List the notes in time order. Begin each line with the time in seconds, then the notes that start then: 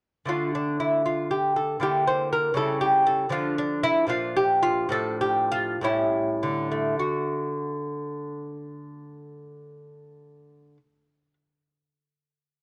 0.25 D3 A3 D4 F4
0.55 D4
0.80 E4
1.06 F4
1.31 G4
1.56 A4
1.80 D3 A#3 E4 G4
2.07 C5
2.33 A#4
2.54 C#3 G3 E4 A4
2.81 G4
3.07 A4
3.29 D3 F3 D4 F4
3.58 D4
3.83 E4
4.07 A#2 F3 D4 F4
4.36 G4
4.63 F4
4.89 A2 F3 D4 A4
5.21 G4
5.52 F4
5.81 A2 G3 C#4 E4
6.43 D3
6.72 A3
6.99 F#4